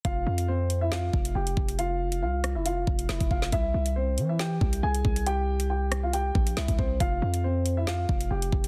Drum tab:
HH |x--x--x----x-x-x|x--x--x-x--xxx--|x--x--x----x-x-x|x--x--x-x--xxx--|
SD |--------o-------|------r-----o--o|--------o-------|------r-----o---|
BD |o---------o---o-|----------o--oo-|o---------o---o-|----------o--oo-|

HH |x--x--x----x-x-x|
SD |--------o-------|
BD |o---------o---o-|